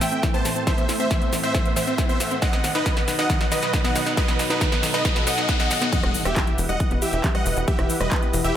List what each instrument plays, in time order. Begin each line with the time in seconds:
Already playing: analog synth pad A2 A3 C4 E4, riser
0.01 synth pluck E3, supersaw synth E5 G5, snare, open hi-hat, shaker
0.12 synth pluck C4, closed hi-hat, shaker
0.23 synth pluck E3, kick, snare, closed hi-hat, shaker
0.34 synth pluck B3, supersaw synth C5 A5, closed hi-hat, shaker
0.45 synth pluck E3, snare, open hi-hat, shaker
0.56 synth pluck C4, closed hi-hat, shaker
0.67 synth pluck E3, supersaw synth C5 E5, analog synth pad F#5, kick, snare, closed hi-hat, shaker
0.78 synth pluck B3, closed hi-hat, shaker
0.89 synth pluck E3, snare, open hi-hat, shaker
1.00 synth pluck C4, supersaw synth C5 E5, closed hi-hat, shaker
1.11 synth pluck E3, kick, snare, closed hi-hat, shaker
1.22 synth pluck B3, closed hi-hat
1.33 synth pluck E3, snare, open hi-hat, shaker
1.43 synth pluck C4, supersaw synth C5 E5, closed hi-hat, shaker
1.54 synth pluck E3, kick, snare, closed hi-hat, shaker
1.66 synth pluck B3, closed hi-hat
1.76 synth pluck E3, supersaw synth C5 E5, snare, open hi-hat, shaker
1.87 synth pluck C4, closed hi-hat, shaker
1.98 synth pluck E3, kick, snare, closed hi-hat, shaker
2.09 synth pluck B3, supersaw synth C5 E5, closed hi-hat, shaker
2.20 synth pluck E3, snare, open hi-hat, shaker
2.31 synth pluck C4, closed hi-hat, shaker
2.42 analog synth pad B2 F#3 D#4 B4, synth pluck D#3, supersaw synth D#5 F#5, kick, snare, closed hi-hat, shaker
2.53 synth pluck B3, snare, closed hi-hat, shaker
2.64 synth pluck D#3, snare, open hi-hat, shaker
2.75 synth pluck D#4, supersaw synth B4 D#5, snare, closed hi-hat, shaker
2.86 synth pluck D#3, kick, snare, closed hi-hat, shaker
2.97 synth pluck B3, snare, closed hi-hat
3.08 synth pluck D#3, snare, open hi-hat, shaker
3.19 synth pluck D#4, supersaw synth D#5 F#5, snare, closed hi-hat, shaker
3.30 synth pluck D#3, kick, snare, closed hi-hat, shaker
3.41 synth pluck B3, snare, closed hi-hat
3.52 synth pluck D#3, supersaw synth B4 D#5, snare, open hi-hat, shaker
3.63 synth pluck D#4, snare, closed hi-hat, shaker
3.73 synth pluck D#3, kick, snare, closed hi-hat, shaker
3.84 synth pluck B3, supersaw synth D#5 F#5, snare, closed hi-hat, shaker
3.95 synth pluck D#3, snare, open hi-hat, shaker
4.06 synth pluck D#4, snare, closed hi-hat, shaker
4.17 synth pluck D#3, analog synth pad A4, supersaw synth B4 D#5, kick, snare, closed hi-hat, shaker
4.28 synth pluck B3, snare, closed hi-hat, shaker
4.39 synth pluck D#3, snare, open hi-hat, shaker
4.50 synth pluck D#4, supersaw synth D#4 B4, snare, closed hi-hat, shaker
4.61 synth pluck D#3, kick, snare, closed hi-hat, shaker
4.72 synth pluck B3, snare, closed hi-hat
4.83 synth pluck D#3, snare, open hi-hat, shaker
4.94 synth pluck D#4, supersaw synth B4 D#5, snare, closed hi-hat, shaker
5.05 synth pluck D#3, kick, snare, closed hi-hat, shaker
5.16 synth pluck B3, snare, closed hi-hat, shaker
5.27 synth pluck B3, supersaw synth D#5 F#5, snare, open hi-hat, shaker
5.38 synth pluck D#4, snare, closed hi-hat, shaker
5.49 synth pluck B3, kick, snare, closed hi-hat, shaker
5.60 supersaw synth D#5 F#5, synth pluck D#5, snare, closed hi-hat, shaker
5.71 synth pluck D#3, snare, open hi-hat, shaker
5.82 synth pluck B3, snare, closed hi-hat, shaker
5.93 analog synth pad E3 E4 G4 B4 F#5, synth pluck E3, supersaw synth D#5 F#5, kick, closed hi-hat, crash, impact, shaker
6.03 analog synth bass E1, synth pluck G3, cross-stick, closed hi-hat
6.14 synth pluck E3, open hi-hat, shaker
6.25 analog synth bass E1, synth pluck B3, supersaw synth G4 E5, cross-stick, closed hi-hat, shaker
6.36 synth pluck E3, kick, clap, closed hi-hat, shaker
6.47 synth pluck E4, closed hi-hat
6.58 analog synth bass E1, synth pluck E3, open hi-hat, shaker
6.69 analog synth bass E1, synth pluck G3, supersaw synth D#5 F#5, shaker
6.80 synth pluck E3, kick, closed hi-hat, shaker
6.91 analog synth bass E1, synth pluck B3, closed hi-hat
7.02 synth pluck E3, supersaw synth G4 E5, open hi-hat, shaker
7.13 analog synth bass E1, synth pluck E4, closed hi-hat, shaker
7.24 synth pluck E3, kick, clap, closed hi-hat, shaker
7.35 synth pluck G3, supersaw synth D#5 F#5, cross-stick, closed hi-hat
7.46 analog synth bass E1, synth pluck E3, open hi-hat, shaker
7.57 analog synth bass E1, synth pluck B3, closed hi-hat, shaker
7.68 synth pluck E3, supersaw synth G4 E5, kick, closed hi-hat, shaker
7.79 analog synth bass E1, synth pluck E4, cross-stick, closed hi-hat
7.90 synth pluck E3, open hi-hat, shaker
8.01 analog synth bass E1, synth pluck G3, supersaw synth B4 D#5, cross-stick, closed hi-hat, shaker
8.11 synth pluck E3, kick, clap, closed hi-hat, shaker
8.22 synth pluck B3, closed hi-hat
8.33 analog synth bass E1, synth pluck E3, open hi-hat, shaker
8.44 analog synth bass E1, synth pluck E4, supersaw synth G4 E5, closed hi-hat, shaker